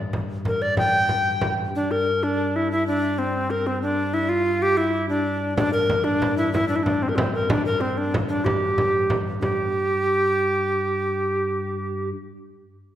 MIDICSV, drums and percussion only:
0, 0, Header, 1, 2, 480
1, 0, Start_track
1, 0, Tempo, 320171
1, 1160, Time_signature, 6, 3, 24, 8
1, 19418, End_track
2, 0, Start_track
2, 0, Title_t, "Frame drum"
2, 198, Note_on_c, 9, 64, 68
2, 348, Note_off_c, 9, 64, 0
2, 439, Note_on_c, 9, 64, 22
2, 589, Note_off_c, 9, 64, 0
2, 677, Note_on_c, 9, 64, 73
2, 827, Note_off_c, 9, 64, 0
2, 1156, Note_on_c, 9, 64, 87
2, 1306, Note_off_c, 9, 64, 0
2, 1634, Note_on_c, 9, 64, 66
2, 1784, Note_off_c, 9, 64, 0
2, 2120, Note_on_c, 9, 64, 85
2, 2270, Note_off_c, 9, 64, 0
2, 2365, Note_on_c, 9, 64, 27
2, 2515, Note_off_c, 9, 64, 0
2, 8358, Note_on_c, 9, 64, 97
2, 8508, Note_off_c, 9, 64, 0
2, 8598, Note_on_c, 9, 64, 31
2, 8748, Note_off_c, 9, 64, 0
2, 8837, Note_on_c, 9, 64, 86
2, 8987, Note_off_c, 9, 64, 0
2, 9324, Note_on_c, 9, 64, 87
2, 9474, Note_off_c, 9, 64, 0
2, 9810, Note_on_c, 9, 64, 81
2, 9960, Note_off_c, 9, 64, 0
2, 10057, Note_on_c, 9, 64, 30
2, 10207, Note_off_c, 9, 64, 0
2, 10286, Note_on_c, 9, 64, 82
2, 10435, Note_off_c, 9, 64, 0
2, 10761, Note_on_c, 9, 64, 102
2, 10911, Note_off_c, 9, 64, 0
2, 11239, Note_on_c, 9, 64, 111
2, 11389, Note_off_c, 9, 64, 0
2, 11483, Note_on_c, 9, 64, 35
2, 11633, Note_off_c, 9, 64, 0
2, 12207, Note_on_c, 9, 64, 99
2, 12357, Note_off_c, 9, 64, 0
2, 12684, Note_on_c, 9, 64, 90
2, 12833, Note_off_c, 9, 64, 0
2, 13162, Note_on_c, 9, 64, 82
2, 13312, Note_off_c, 9, 64, 0
2, 13410, Note_on_c, 9, 64, 27
2, 13560, Note_off_c, 9, 64, 0
2, 13641, Note_on_c, 9, 64, 87
2, 13791, Note_off_c, 9, 64, 0
2, 14129, Note_on_c, 9, 64, 83
2, 14279, Note_off_c, 9, 64, 0
2, 19418, End_track
0, 0, End_of_file